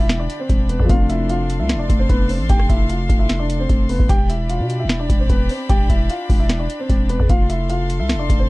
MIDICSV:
0, 0, Header, 1, 6, 480
1, 0, Start_track
1, 0, Tempo, 400000
1, 1074, Time_signature, 4, 2, 24, 8
1, 10190, End_track
2, 0, Start_track
2, 0, Title_t, "String section"
2, 0, Program_c, 0, 48
2, 0, Note_on_c, 0, 62, 85
2, 0, Note_on_c, 0, 67, 76
2, 0, Note_on_c, 0, 74, 77
2, 0, Note_on_c, 0, 83, 94
2, 1035, Note_off_c, 0, 67, 0
2, 1035, Note_off_c, 0, 74, 0
2, 1035, Note_off_c, 0, 83, 0
2, 1073, Note_on_c, 0, 69, 75
2, 1073, Note_on_c, 0, 77, 78
2, 1073, Note_on_c, 0, 84, 92
2, 4866, Note_off_c, 0, 62, 0
2, 4875, Note_off_c, 0, 69, 0
2, 4875, Note_off_c, 0, 77, 0
2, 4875, Note_off_c, 0, 84, 0
2, 4913, Note_on_c, 0, 62, 85
2, 4913, Note_on_c, 0, 67, 76
2, 4913, Note_on_c, 0, 74, 77
2, 4913, Note_on_c, 0, 83, 93
2, 8715, Note_off_c, 0, 67, 0
2, 8715, Note_off_c, 0, 74, 0
2, 8715, Note_off_c, 0, 83, 0
2, 8753, Note_on_c, 0, 69, 78
2, 8753, Note_on_c, 0, 77, 77
2, 8753, Note_on_c, 0, 84, 92
2, 10190, Note_off_c, 0, 62, 0
2, 10190, Note_off_c, 0, 69, 0
2, 10190, Note_off_c, 0, 77, 0
2, 10190, Note_off_c, 0, 84, 0
2, 10190, End_track
3, 0, Start_track
3, 0, Title_t, "Grand piano"
3, 0, Program_c, 1, 0
3, 0, Note_on_c, 1, 76, 79
3, 7, Note_on_c, 1, 64, 59
3, 216, Note_off_c, 1, 76, 0
3, 221, Note_off_c, 1, 64, 0
3, 235, Note_on_c, 1, 74, 84
3, 245, Note_on_c, 1, 62, 65
3, 455, Note_off_c, 1, 74, 0
3, 460, Note_off_c, 1, 62, 0
3, 474, Note_on_c, 1, 72, 76
3, 484, Note_on_c, 1, 60, 62
3, 812, Note_off_c, 1, 72, 0
3, 817, Note_off_c, 1, 60, 0
3, 836, Note_on_c, 1, 71, 72
3, 845, Note_on_c, 1, 59, 57
3, 1055, Note_off_c, 1, 71, 0
3, 1060, Note_off_c, 1, 59, 0
3, 1077, Note_on_c, 1, 77, 105
3, 1087, Note_on_c, 1, 65, 76
3, 1296, Note_off_c, 1, 77, 0
3, 1301, Note_off_c, 1, 65, 0
3, 1314, Note_on_c, 1, 76, 80
3, 1324, Note_on_c, 1, 64, 63
3, 1534, Note_off_c, 1, 76, 0
3, 1540, Note_off_c, 1, 64, 0
3, 1556, Note_on_c, 1, 77, 92
3, 1566, Note_on_c, 1, 65, 77
3, 1893, Note_off_c, 1, 77, 0
3, 1899, Note_off_c, 1, 65, 0
3, 1916, Note_on_c, 1, 76, 75
3, 1925, Note_on_c, 1, 64, 56
3, 2135, Note_off_c, 1, 76, 0
3, 2140, Note_off_c, 1, 64, 0
3, 2151, Note_on_c, 1, 74, 81
3, 2161, Note_on_c, 1, 62, 59
3, 2373, Note_off_c, 1, 74, 0
3, 2378, Note_off_c, 1, 62, 0
3, 2388, Note_on_c, 1, 72, 84
3, 2398, Note_on_c, 1, 60, 58
3, 2501, Note_off_c, 1, 72, 0
3, 2506, Note_off_c, 1, 60, 0
3, 2513, Note_on_c, 1, 71, 92
3, 2522, Note_on_c, 1, 59, 65
3, 2733, Note_off_c, 1, 71, 0
3, 2739, Note_off_c, 1, 59, 0
3, 2752, Note_on_c, 1, 72, 71
3, 2762, Note_on_c, 1, 60, 55
3, 2973, Note_off_c, 1, 72, 0
3, 2979, Note_off_c, 1, 60, 0
3, 2995, Note_on_c, 1, 79, 102
3, 3005, Note_on_c, 1, 67, 71
3, 3215, Note_off_c, 1, 79, 0
3, 3220, Note_off_c, 1, 67, 0
3, 3233, Note_on_c, 1, 76, 85
3, 3243, Note_on_c, 1, 64, 64
3, 3454, Note_off_c, 1, 76, 0
3, 3459, Note_off_c, 1, 64, 0
3, 3476, Note_on_c, 1, 77, 77
3, 3486, Note_on_c, 1, 65, 62
3, 3813, Note_off_c, 1, 77, 0
3, 3818, Note_off_c, 1, 65, 0
3, 3830, Note_on_c, 1, 76, 73
3, 3839, Note_on_c, 1, 64, 53
3, 4052, Note_off_c, 1, 76, 0
3, 4057, Note_off_c, 1, 64, 0
3, 4072, Note_on_c, 1, 74, 78
3, 4082, Note_on_c, 1, 62, 66
3, 4293, Note_off_c, 1, 74, 0
3, 4299, Note_off_c, 1, 62, 0
3, 4315, Note_on_c, 1, 72, 80
3, 4325, Note_on_c, 1, 60, 60
3, 4653, Note_off_c, 1, 72, 0
3, 4658, Note_off_c, 1, 60, 0
3, 4675, Note_on_c, 1, 71, 76
3, 4684, Note_on_c, 1, 59, 63
3, 4895, Note_off_c, 1, 71, 0
3, 4900, Note_off_c, 1, 59, 0
3, 4911, Note_on_c, 1, 79, 108
3, 4921, Note_on_c, 1, 67, 90
3, 5133, Note_off_c, 1, 79, 0
3, 5138, Note_off_c, 1, 67, 0
3, 5156, Note_on_c, 1, 76, 80
3, 5166, Note_on_c, 1, 64, 59
3, 5375, Note_off_c, 1, 76, 0
3, 5380, Note_off_c, 1, 64, 0
3, 5394, Note_on_c, 1, 77, 82
3, 5403, Note_on_c, 1, 65, 69
3, 5732, Note_off_c, 1, 77, 0
3, 5737, Note_off_c, 1, 65, 0
3, 5757, Note_on_c, 1, 76, 75
3, 5766, Note_on_c, 1, 64, 57
3, 5976, Note_off_c, 1, 76, 0
3, 5981, Note_off_c, 1, 64, 0
3, 5996, Note_on_c, 1, 74, 79
3, 6006, Note_on_c, 1, 62, 58
3, 6215, Note_off_c, 1, 74, 0
3, 6221, Note_off_c, 1, 62, 0
3, 6234, Note_on_c, 1, 72, 72
3, 6243, Note_on_c, 1, 60, 57
3, 6344, Note_off_c, 1, 72, 0
3, 6349, Note_off_c, 1, 60, 0
3, 6354, Note_on_c, 1, 71, 82
3, 6364, Note_on_c, 1, 59, 64
3, 6574, Note_off_c, 1, 71, 0
3, 6580, Note_off_c, 1, 59, 0
3, 6596, Note_on_c, 1, 72, 71
3, 6605, Note_on_c, 1, 60, 57
3, 6815, Note_off_c, 1, 72, 0
3, 6820, Note_off_c, 1, 60, 0
3, 6831, Note_on_c, 1, 79, 108
3, 6841, Note_on_c, 1, 67, 83
3, 7053, Note_off_c, 1, 79, 0
3, 7058, Note_off_c, 1, 67, 0
3, 7074, Note_on_c, 1, 76, 84
3, 7084, Note_on_c, 1, 64, 61
3, 7294, Note_off_c, 1, 76, 0
3, 7300, Note_off_c, 1, 64, 0
3, 7314, Note_on_c, 1, 77, 88
3, 7324, Note_on_c, 1, 65, 68
3, 7652, Note_off_c, 1, 77, 0
3, 7657, Note_off_c, 1, 65, 0
3, 7677, Note_on_c, 1, 76, 77
3, 7686, Note_on_c, 1, 64, 59
3, 7896, Note_off_c, 1, 76, 0
3, 7901, Note_off_c, 1, 64, 0
3, 7915, Note_on_c, 1, 74, 84
3, 7925, Note_on_c, 1, 62, 62
3, 8135, Note_off_c, 1, 74, 0
3, 8140, Note_off_c, 1, 62, 0
3, 8154, Note_on_c, 1, 72, 75
3, 8164, Note_on_c, 1, 60, 64
3, 8492, Note_off_c, 1, 72, 0
3, 8497, Note_off_c, 1, 60, 0
3, 8515, Note_on_c, 1, 71, 75
3, 8525, Note_on_c, 1, 59, 57
3, 8735, Note_off_c, 1, 71, 0
3, 8740, Note_off_c, 1, 59, 0
3, 8757, Note_on_c, 1, 77, 98
3, 8766, Note_on_c, 1, 65, 80
3, 8976, Note_off_c, 1, 77, 0
3, 8981, Note_off_c, 1, 65, 0
3, 8994, Note_on_c, 1, 76, 81
3, 9003, Note_on_c, 1, 64, 62
3, 9214, Note_off_c, 1, 76, 0
3, 9219, Note_off_c, 1, 64, 0
3, 9236, Note_on_c, 1, 77, 91
3, 9246, Note_on_c, 1, 65, 76
3, 9573, Note_off_c, 1, 77, 0
3, 9578, Note_off_c, 1, 65, 0
3, 9595, Note_on_c, 1, 76, 73
3, 9605, Note_on_c, 1, 64, 55
3, 9815, Note_off_c, 1, 76, 0
3, 9820, Note_off_c, 1, 64, 0
3, 9831, Note_on_c, 1, 74, 80
3, 9841, Note_on_c, 1, 62, 60
3, 10053, Note_off_c, 1, 74, 0
3, 10058, Note_off_c, 1, 62, 0
3, 10068, Note_on_c, 1, 72, 85
3, 10078, Note_on_c, 1, 60, 58
3, 10181, Note_off_c, 1, 72, 0
3, 10186, Note_off_c, 1, 60, 0
3, 10190, End_track
4, 0, Start_track
4, 0, Title_t, "Felt piano"
4, 0, Program_c, 2, 0
4, 0, Control_c, 2, 64, 127
4, 0, Note_on_c, 2, 50, 64
4, 0, Note_on_c, 2, 55, 64
4, 0, Note_on_c, 2, 62, 79
4, 995, Note_off_c, 2, 50, 0
4, 1014, Note_on_c, 2, 53, 76
4, 1016, Note_off_c, 2, 55, 0
4, 1055, Note_on_c, 2, 57, 61
4, 1057, Note_off_c, 2, 62, 0
4, 1089, Control_c, 2, 64, 0
4, 1096, Note_on_c, 2, 60, 63
4, 1137, Note_on_c, 2, 62, 77
4, 1280, Control_c, 2, 64, 127
4, 4836, Note_off_c, 2, 53, 0
4, 4856, Note_off_c, 2, 57, 0
4, 4877, Note_off_c, 2, 60, 0
4, 4897, Note_off_c, 2, 62, 0
4, 4927, Control_c, 2, 64, 0
4, 10190, End_track
5, 0, Start_track
5, 0, Title_t, "808-style bass"
5, 0, Program_c, 3, 38
5, 0, Note_on_c, 3, 28, 103
5, 334, Note_off_c, 3, 28, 0
5, 593, Note_on_c, 3, 28, 102
5, 939, Note_off_c, 3, 28, 0
5, 954, Note_on_c, 3, 40, 102
5, 1069, Note_off_c, 3, 40, 0
5, 1074, Note_on_c, 3, 29, 105
5, 1913, Note_on_c, 3, 36, 102
5, 1931, Note_off_c, 3, 29, 0
5, 2093, Note_on_c, 3, 29, 99
5, 2111, Note_off_c, 3, 36, 0
5, 2264, Note_off_c, 3, 29, 0
5, 2274, Note_on_c, 3, 29, 106
5, 2504, Note_off_c, 3, 29, 0
5, 2513, Note_on_c, 3, 29, 107
5, 2873, Note_on_c, 3, 33, 99
5, 2891, Note_off_c, 3, 29, 0
5, 2987, Note_off_c, 3, 33, 0
5, 2994, Note_on_c, 3, 29, 113
5, 3224, Note_off_c, 3, 29, 0
5, 3233, Note_on_c, 3, 29, 104
5, 3694, Note_off_c, 3, 29, 0
5, 3713, Note_on_c, 3, 29, 108
5, 4405, Note_off_c, 3, 29, 0
5, 4433, Note_on_c, 3, 29, 108
5, 4779, Note_off_c, 3, 29, 0
5, 4794, Note_on_c, 3, 29, 104
5, 4906, Note_off_c, 3, 29, 0
5, 4914, Note_on_c, 3, 28, 106
5, 5513, Note_on_c, 3, 47, 100
5, 5531, Note_off_c, 3, 28, 0
5, 5813, Note_on_c, 3, 28, 103
5, 5831, Note_off_c, 3, 47, 0
5, 6098, Note_off_c, 3, 28, 0
5, 6114, Note_on_c, 3, 28, 102
5, 6344, Note_off_c, 3, 28, 0
5, 6353, Note_on_c, 3, 28, 104
5, 6584, Note_off_c, 3, 28, 0
5, 6834, Note_on_c, 3, 28, 109
5, 7064, Note_off_c, 3, 28, 0
5, 7074, Note_on_c, 3, 28, 102
5, 7304, Note_off_c, 3, 28, 0
5, 7554, Note_on_c, 3, 28, 103
5, 8014, Note_off_c, 3, 28, 0
5, 8274, Note_on_c, 3, 28, 110
5, 8619, Note_off_c, 3, 28, 0
5, 8634, Note_on_c, 3, 40, 103
5, 8749, Note_off_c, 3, 40, 0
5, 8754, Note_on_c, 3, 29, 105
5, 9594, Note_on_c, 3, 36, 101
5, 9612, Note_off_c, 3, 29, 0
5, 9774, Note_on_c, 3, 29, 97
5, 9792, Note_off_c, 3, 36, 0
5, 9945, Note_off_c, 3, 29, 0
5, 9954, Note_on_c, 3, 29, 101
5, 10184, Note_off_c, 3, 29, 0
5, 10190, End_track
6, 0, Start_track
6, 0, Title_t, "Drums"
6, 113, Note_on_c, 9, 37, 64
6, 113, Note_on_c, 9, 38, 109
6, 117, Note_on_c, 9, 42, 82
6, 233, Note_off_c, 9, 37, 0
6, 233, Note_off_c, 9, 38, 0
6, 237, Note_off_c, 9, 42, 0
6, 356, Note_on_c, 9, 42, 85
6, 476, Note_off_c, 9, 42, 0
6, 593, Note_on_c, 9, 36, 93
6, 594, Note_on_c, 9, 42, 65
6, 713, Note_off_c, 9, 36, 0
6, 714, Note_off_c, 9, 42, 0
6, 832, Note_on_c, 9, 42, 77
6, 952, Note_off_c, 9, 42, 0
6, 954, Note_on_c, 9, 36, 97
6, 1074, Note_off_c, 9, 36, 0
6, 1074, Note_on_c, 9, 36, 119
6, 1074, Note_on_c, 9, 42, 82
6, 1194, Note_off_c, 9, 36, 0
6, 1194, Note_off_c, 9, 42, 0
6, 1316, Note_on_c, 9, 42, 73
6, 1436, Note_off_c, 9, 42, 0
6, 1554, Note_on_c, 9, 42, 71
6, 1674, Note_off_c, 9, 42, 0
6, 1796, Note_on_c, 9, 42, 75
6, 1916, Note_off_c, 9, 42, 0
6, 2033, Note_on_c, 9, 37, 66
6, 2033, Note_on_c, 9, 38, 110
6, 2037, Note_on_c, 9, 42, 85
6, 2153, Note_off_c, 9, 37, 0
6, 2153, Note_off_c, 9, 38, 0
6, 2157, Note_off_c, 9, 42, 0
6, 2274, Note_on_c, 9, 36, 97
6, 2277, Note_on_c, 9, 42, 84
6, 2394, Note_off_c, 9, 36, 0
6, 2397, Note_off_c, 9, 42, 0
6, 2513, Note_on_c, 9, 36, 93
6, 2514, Note_on_c, 9, 42, 65
6, 2633, Note_off_c, 9, 36, 0
6, 2634, Note_off_c, 9, 42, 0
6, 2752, Note_on_c, 9, 46, 58
6, 2872, Note_off_c, 9, 46, 0
6, 2993, Note_on_c, 9, 42, 79
6, 2994, Note_on_c, 9, 36, 117
6, 3113, Note_off_c, 9, 42, 0
6, 3114, Note_off_c, 9, 36, 0
6, 3114, Note_on_c, 9, 37, 88
6, 3233, Note_on_c, 9, 36, 90
6, 3234, Note_off_c, 9, 37, 0
6, 3236, Note_on_c, 9, 42, 72
6, 3353, Note_off_c, 9, 36, 0
6, 3356, Note_off_c, 9, 42, 0
6, 3474, Note_on_c, 9, 42, 70
6, 3594, Note_off_c, 9, 42, 0
6, 3713, Note_on_c, 9, 36, 100
6, 3717, Note_on_c, 9, 42, 74
6, 3833, Note_off_c, 9, 36, 0
6, 3837, Note_off_c, 9, 42, 0
6, 3953, Note_on_c, 9, 38, 108
6, 3957, Note_on_c, 9, 42, 83
6, 4073, Note_off_c, 9, 38, 0
6, 4077, Note_off_c, 9, 42, 0
6, 4197, Note_on_c, 9, 42, 85
6, 4317, Note_off_c, 9, 42, 0
6, 4433, Note_on_c, 9, 36, 90
6, 4434, Note_on_c, 9, 42, 67
6, 4553, Note_off_c, 9, 36, 0
6, 4554, Note_off_c, 9, 42, 0
6, 4672, Note_on_c, 9, 46, 58
6, 4792, Note_off_c, 9, 46, 0
6, 4794, Note_on_c, 9, 36, 93
6, 4913, Note_on_c, 9, 42, 80
6, 4914, Note_off_c, 9, 36, 0
6, 4914, Note_on_c, 9, 36, 115
6, 5033, Note_off_c, 9, 42, 0
6, 5034, Note_off_c, 9, 36, 0
6, 5156, Note_on_c, 9, 42, 73
6, 5276, Note_off_c, 9, 42, 0
6, 5394, Note_on_c, 9, 42, 75
6, 5514, Note_off_c, 9, 42, 0
6, 5637, Note_on_c, 9, 42, 74
6, 5757, Note_off_c, 9, 42, 0
6, 5873, Note_on_c, 9, 37, 65
6, 5873, Note_on_c, 9, 38, 112
6, 5878, Note_on_c, 9, 42, 85
6, 5993, Note_off_c, 9, 37, 0
6, 5993, Note_off_c, 9, 38, 0
6, 5998, Note_off_c, 9, 42, 0
6, 6114, Note_on_c, 9, 36, 95
6, 6117, Note_on_c, 9, 42, 87
6, 6234, Note_off_c, 9, 36, 0
6, 6237, Note_off_c, 9, 42, 0
6, 6353, Note_on_c, 9, 36, 93
6, 6354, Note_on_c, 9, 42, 68
6, 6473, Note_off_c, 9, 36, 0
6, 6474, Note_off_c, 9, 42, 0
6, 6592, Note_on_c, 9, 46, 58
6, 6712, Note_off_c, 9, 46, 0
6, 6834, Note_on_c, 9, 36, 118
6, 6834, Note_on_c, 9, 42, 81
6, 6954, Note_off_c, 9, 36, 0
6, 6954, Note_off_c, 9, 42, 0
6, 7073, Note_on_c, 9, 36, 90
6, 7076, Note_on_c, 9, 42, 72
6, 7193, Note_off_c, 9, 36, 0
6, 7196, Note_off_c, 9, 42, 0
6, 7314, Note_on_c, 9, 42, 75
6, 7434, Note_off_c, 9, 42, 0
6, 7554, Note_on_c, 9, 36, 104
6, 7557, Note_on_c, 9, 46, 53
6, 7674, Note_off_c, 9, 36, 0
6, 7677, Note_off_c, 9, 46, 0
6, 7793, Note_on_c, 9, 37, 66
6, 7793, Note_on_c, 9, 38, 114
6, 7797, Note_on_c, 9, 42, 87
6, 7913, Note_off_c, 9, 37, 0
6, 7913, Note_off_c, 9, 38, 0
6, 7917, Note_off_c, 9, 42, 0
6, 8036, Note_on_c, 9, 42, 90
6, 8156, Note_off_c, 9, 42, 0
6, 8274, Note_on_c, 9, 36, 90
6, 8274, Note_on_c, 9, 42, 68
6, 8394, Note_off_c, 9, 36, 0
6, 8394, Note_off_c, 9, 42, 0
6, 8512, Note_on_c, 9, 42, 76
6, 8632, Note_off_c, 9, 42, 0
6, 8634, Note_on_c, 9, 36, 94
6, 8754, Note_off_c, 9, 36, 0
6, 8754, Note_on_c, 9, 36, 116
6, 8754, Note_on_c, 9, 42, 83
6, 8874, Note_off_c, 9, 36, 0
6, 8874, Note_off_c, 9, 42, 0
6, 8996, Note_on_c, 9, 42, 76
6, 9116, Note_off_c, 9, 42, 0
6, 9235, Note_on_c, 9, 42, 72
6, 9355, Note_off_c, 9, 42, 0
6, 9477, Note_on_c, 9, 42, 74
6, 9597, Note_off_c, 9, 42, 0
6, 9713, Note_on_c, 9, 37, 68
6, 9713, Note_on_c, 9, 38, 115
6, 9717, Note_on_c, 9, 42, 85
6, 9833, Note_off_c, 9, 37, 0
6, 9833, Note_off_c, 9, 38, 0
6, 9837, Note_off_c, 9, 42, 0
6, 9954, Note_on_c, 9, 36, 96
6, 9957, Note_on_c, 9, 42, 88
6, 10074, Note_off_c, 9, 36, 0
6, 10077, Note_off_c, 9, 42, 0
6, 10190, End_track
0, 0, End_of_file